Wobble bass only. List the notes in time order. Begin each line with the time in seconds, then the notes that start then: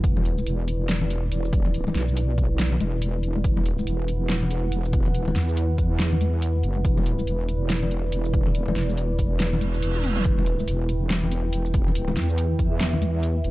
0.04 E1
0.46 E1
1.32 E1
1.95 B1
2.81 E1
3.44 E1
3.87 E1
4.72 E1
5.16 D#1
5.36 E2
6.63 F#1
6.85 E1
7.27 E1
8.12 E1
8.56 D#1
8.76 E1
9.61 E1
10.25 E1
10.68 E1
11.53 E1
12.17 E2
13.44 F#1